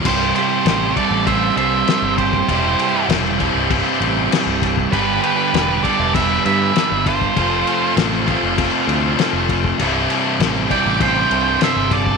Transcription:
<<
  \new Staff \with { instrumentName = "Lead electric guitar" } { \time 4/4 \key c \major \tempo 4 = 99 c''8 c''4 d''8 e''8 e''4 c''8~ | c''4 r2. | b'8 b'4 d''8 e''8 e''4 c''8~ | c''4 r2. |
r4. g''8 g''4 e''8 d''8 | }
  \new Staff \with { instrumentName = "Lead electric guitar" } { \time 4/4 \key c \major g'8 g'4 a'8 c''8 c''4 g'8~ | g'4 r2. | g'8 g'4 a'8 b'8 b'4 f'8~ | f'4 r2. |
r4. d''8 c''4 c''8 a'8 | }
  \new Staff \with { instrumentName = "Tonewheel organ" } { \time 4/4 \key c \major <e' g' c''>1 | <e' g' c''>1 | <d' g' b''>1 | <f' a' c''>1 |
<e' g' c''>1 | }
  \new Staff \with { instrumentName = "Distorted electric guitar" } { \clef bass \time 4/4 \key c \major <c, g, c g e'>4. <c, g, c g e'>2~ <c, g, c g e'>8 | <c, g, c g e'>4. <c, g, c g e'>2~ <c, g, c g e'>8 | <g, d g b d' g'>4. <g, d g b d' g'>2~ <g, d g b d' g'>8 | <f, c f a c' f'>4. <f, c f a c' f'>2~ <f, c f a c' f'>8 |
<c, g, c g e'>4. <c, g, c g e'>2~ <c, g, c g e'>8 | }
  \new Staff \with { instrumentName = "Fingered electric bass" } { \clef bass \time 4/4 \key c \major c,,8 r8 a,,8 r16 a,,8. c,8 r16 g,,8. | e,,8 r8 e,,8. c,,8 r16 a,,8 r16 c,,8. | g,,8 r8 e,,8 r16 e,,8. g,8 r16 g,,8. | f,,8 r8 a,,8. f,,8 r16 d,8 r16 f,,8. |
c,,8 r8 a,,8 r16 a,,8. c,8 r16 g,,8. | }
  \new DrumStaff \with { instrumentName = "Drums" } \drummode { \time 4/4 <cymc bd>8 cymc8 <cymc sn>8 <cymc bd>8 <cymc bd>8 cymc8 <cymc sn>8 <cymc bd>16 bd16 | <cymc bd>8 cymc8 <cymc sn>8 <cymc bd>8 <cymc bd>8 cymc8 <cymc sn>8 <cymc bd>16 bd16 | <cymc bd>8 cymc8 <cymc sn>8 <cymc bd>8 <cymc bd>8 cymc8 <cymc sn>8 <cymc bd>16 bd16 | <cymc bd>8 cymc8 <cymc sn>8 <cymc bd>8 <cymc bd>8 cymc8 <cymc sn>8 <cymc bd>16 bd16 |
<cymc bd>8 cymc8 <cymc sn>8 <cymc bd>8 <cymc bd>8 cymc8 <cymc sn>8 <cymc bd>16 bd16 | }
>>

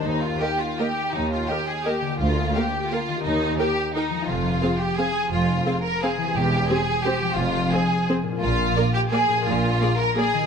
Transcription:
<<
  \new Staff \with { instrumentName = "Violin section" } { \time 3/4 \key ees \major \tempo 4 = 171 r4 ees''4 ees''4 | r4 ees''4 ees''4 | r4 f''4 f''4 | r4 g''4 g''4 |
r4 f''4 f''4 | r4 f''4 f''4 | r4 c''4 c''4 | r4 c''4 c''4 |
r4 d''4 d''4 | r4 d''4 d''4 | }
  \new Staff \with { instrumentName = "Violin section" } { \time 3/4 \key ees \major ees'8 f'8 g'8 f'8 g'4 | ees'8 f'8 g'8 aes'8 g'4 | f'4 g'4 f'4 | ees'4 g'4 ees'4 |
f'4. g'8 aes'4 | f'4. bes'8 aes'4 | g'4 aes'4 g'4 | f'4 aes'4 r4 |
f'4. g'8 aes'4 | f'4. bes'8 aes'4 | }
  \new Staff \with { instrumentName = "Harp" } { \time 3/4 \key ees \major << { <g' ees'' bes''>2.~ | <g' ees'' bes''>2.~ | <g' ees'' bes''>2. | r2. |
r2. | r2. | r2. | r2. |
r2. | r2. | } \\ { <ees bes ees' bes'>2.~ | <ees bes ees' bes'>2. | <d bes f' bes'>2. | <ees bes g' ees''>2. |
<f aes aes' c''>2.~ | <f aes aes' c''>2. | <e c' g' c''>2. | <f c' aes' c''>2. |
<bes, d' f' bes'>2. | <bes, d' aes' bes'>2. | } >> }
  \new Staff \with { instrumentName = "Viola section" } { \time 3/4 \key ees \major r4 <bes bes'>4 <bes bes'>4 | r4 <bes bes'>4 <bes bes'>4 | r4 <bes bes'>4 <bes bes'>4 | r4 <ees' bes'>4 <ees' bes'>4 |
r4 <c' aes'>4 <c' aes'>4 | r4 <c' aes'>4 <c' aes'>4 | r4 <c' g'>4 <c' g'>4 | r4 <c' aes'>4 <c' aes'>4 |
r4 <bes bes'>4 <bes bes'>4 | r4 <bes aes'>4 <bes aes'>4 | }
  \new Staff \with { instrumentName = "Cello section" } { \clef bass \time 3/4 \key ees \major ees,4 r2 | ees,4 r2 | d,4 r2 | ees,4 r2 |
f,4 r2 | f,4 r2 | e,4 r2 | f,4 r2 |
bes,4 r2 | bes,4 r2 | }
  \new Staff \with { instrumentName = "Double bass section" } { \clef bass \time 3/4 \key ees \major ees,4 r2 | ees,4 r2 | d,4 r2 | ees,4 r2 |
f,,4 r2 | f,,4 r2 | e,,4 r2 | f,,4 r2 |
bes,,4 r2 | bes,,4 r2 | }
>>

